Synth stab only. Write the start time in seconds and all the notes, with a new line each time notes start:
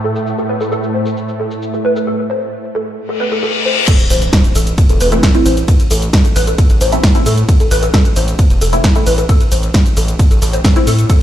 5.12 A3 C4 E4
5.35 A3 C4 E4
6.92 A3 C4 E4
7.15 A3 C4 E4
8.73 A3 C4 E4
8.96 A3 C4 E4
10.76 A3 C4 E4